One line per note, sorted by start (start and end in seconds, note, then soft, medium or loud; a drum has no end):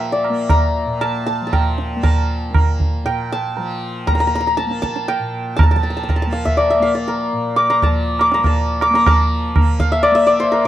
0.00 0.85 A#2 medium
0.00 1.41 F3 medium
0.00 0.30 A#3 medium
0.00 2.17 E5 medium
0.00 1.53 G5 medium
0.00 0.56 A5 medium
0.12 2.60 D5 medium
0.24 tabla na medium
0.30 1.96 A#3 medium
0.50 1.07 A#5 medium
0.50 tabla na medium
0.50 tabla ge medium
0.86 3.03 A#2 medium
1.01 1.26 A5 medium
1.01 tabla na medium
1.26 1.46 A5 medium
1.41 3.57 F3 medium
1.47 2.03 A5 medium
1.53 3.05 G5 medium
1.53 tabla na medium
1.53 tabla ge medium
1.78 tabla te medium
1.96 2.50 A#3 medium
2.03 3.32 A5 medium
2.03 tabla na loud
2.03 tabla ge medium
2.50 4.12 A#3 medium
2.54 tabla na medium
2.54 tabla ge medium
2.80 tabla ge soft
3.04 5.19 A#2 medium
3.04 5.08 G5 medium
3.04 tabla na medium
3.32 4.13 A5 medium
3.57 5.73 F3 medium
3.57 tabla tin medium
4.07 4.15 A#5 medium
4.07 tabla na medium
4.07 tabla ge medium
4.12 4.66 A#3 medium
4.12 4.20 A#5 medium
4.20 4.27 A#5 medium
4.27 4.35 A#5 medium
4.35 4.40 A#5 medium
4.41 4.47 A#5 medium
4.47 4.63 A#5 medium
4.57 4.82 A5 medium
4.57 tabla te medium
4.66 6.27 A#3 medium
4.71 tabla te medium
4.82 5.56 A5 medium
4.82 tabla ke medium
4.96 tabla te medium
5.08 7.16 G5 medium
5.08 tabla na medium
5.19 7.32 A#2 medium
5.56 5.63 A5 medium
5.56 tabla na loud
5.56 tabla ge medium
5.63 5.71 A5 medium
5.71 7.85 F3 medium
5.71 5.76 A5 medium
5.76 5.83 A5 medium
5.83 5.90 A5 medium
5.90 5.96 A5 medium
5.97 6.03 A5 medium
6.03 6.09 A5 soft
6.09 6.16 A5 medium
6.09 tabla na medium
6.09 tabla ge medium
6.16 6.22 A5 medium
6.22 7.14 A5 medium
6.27 6.80 A#3 medium
6.33 6.51 F5 medium
6.33 tabla te soft
6.45 6.70 E5 medium
6.45 tabla ge soft
6.57 6.94 D5 medium
6.57 tabla na medium
6.70 6.88 E5 medium
6.80 8.38 A#3 medium
6.80 9.04 F5 medium
6.95 9.42 D5 medium
7.08 7.89 A#4 medium
7.08 tabla tin medium
7.33 10.64 A#2 medium
7.56 8.20 D6 medium
7.56 tabla na medium
7.70 7.89 A#5 medium
7.70 tabla te medium
7.82 9.07 F3 medium
7.82 8.40 A5 medium
7.82 tabla na medium
7.82 tabla ge medium
8.19 8.82 D6 medium
8.19 tabla na medium
8.32 8.52 A#5 medium
8.32 tabla te medium
8.38 8.90 A#3 medium
8.44 9.01 A5 medium
8.44 tabla na medium
8.44 tabla ge medium
8.81 10.45 D6 medium
8.81 tabla na medium
8.90 9.58 A#3 medium
8.90 tabla te medium
8.95 9.13 A#5 medium
9.06 10.68 F3 medium
9.06 10.58 A5 medium
9.06 tabla na loud
9.06 tabla ge loud
9.56 10.11 A#3 medium
9.56 tabla na medium
9.56 tabla ge medium
9.80 9.98 F5 medium
9.80 tabla ge medium
9.92 10.15 E5 medium
10.03 10.26 D5 loud
10.03 tabla na medium
10.11 10.68 A#3 medium
10.11 10.68 E5 medium
10.27 10.65 D5 medium
10.40 10.68 C5 medium
10.52 10.68 A#4 medium
10.52 tabla tin medium
10.64 10.68 A#2 medium